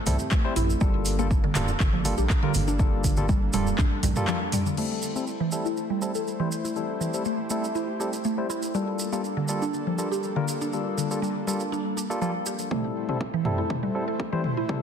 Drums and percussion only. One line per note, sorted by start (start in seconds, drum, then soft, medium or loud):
0.06 open hi-hat medium
0.06 high conga medium
0.06 low conga loud
0.06 maracas medium
0.19 maracas medium
0.31 kick loud
0.31 clap medium
0.31 maracas soft
0.56 mid tom medium
0.56 open hi-hat medium
0.56 high conga medium
0.56 maracas loud
0.70 maracas soft
0.81 kick loud
0.81 high conga medium
0.81 maracas soft
1.05 open hi-hat medium
1.05 maracas medium
1.19 high conga medium
1.19 maracas soft
1.31 kick loud
1.31 maracas soft
1.43 high conga medium
1.55 clap medium
1.55 mid tom medium
1.55 open hi-hat medium
1.55 maracas loud
1.68 maracas soft
1.80 kick loud
1.80 clap medium
1.80 high conga medium
1.80 maracas soft
2.04 open hi-hat medium
2.04 high conga medium
2.04 maracas medium
2.17 maracas soft
2.30 kick loud
2.30 clap medium
2.30 high conga medium
2.30 maracas soft
2.54 open hi-hat medium
2.54 low conga medium
2.54 maracas medium
2.68 maracas medium
2.79 kick loud
2.79 high conga medium
2.79 maracas soft
3.04 kick medium
3.04 open hi-hat medium
3.04 maracas loud
3.17 high conga medium
3.17 low conga medium
3.17 maracas medium
3.29 kick loud
3.29 maracas soft
3.53 mid tom medium
3.53 open hi-hat loud
3.53 maracas medium
3.67 maracas medium
3.78 kick loud
3.78 clap medium
3.78 high conga medium
3.78 low conga medium
3.78 maracas soft
4.03 open hi-hat medium
4.03 high conga medium
4.03 low conga loud
4.03 maracas medium
4.16 mid tom medium
4.16 maracas medium
4.27 clap medium
4.27 maracas soft
4.52 mid tom medium
4.52 open hi-hat medium
4.52 high conga medium
4.52 maracas medium
4.66 maracas medium
4.77 crash medium
4.77 maracas soft
5.02 maracas medium
5.16 maracas soft
5.27 maracas soft
5.52 maracas medium
5.66 maracas soft
5.77 maracas soft
6.02 maracas medium
6.15 maracas medium
6.27 maracas soft
6.52 maracas medium
6.65 maracas soft
6.76 maracas soft
7.01 maracas medium
7.14 maracas medium
7.25 maracas soft
7.50 maracas medium
7.64 maracas soft
7.75 maracas soft
8.01 maracas medium
8.13 maracas medium
8.24 maracas soft
8.50 maracas medium
8.63 maracas medium
8.75 maracas soft
8.99 maracas medium
9.13 maracas medium
9.24 maracas soft
9.48 maracas medium
9.62 maracas soft
9.74 maracas soft
9.98 maracas loud
10.12 maracas medium
10.23 maracas soft
10.48 maracas loud
10.61 maracas medium
10.73 maracas soft
10.98 maracas medium
11.11 maracas medium
11.23 maracas soft
11.48 maracas medium
11.60 maracas medium
11.73 maracas soft
11.98 maracas medium
12.11 maracas medium
12.22 maracas soft
12.46 maracas loud
12.59 maracas medium
12.71 kick loud
12.71 mid tom soft
13.09 mid tom soft
13.21 kick loud
13.45 mid tom medium
13.45 mid tom soft
13.70 kick loud
13.70 mid tom medium
14.20 kick loud
14.44 mid tom medium
14.69 kick loud
14.69 mid tom medium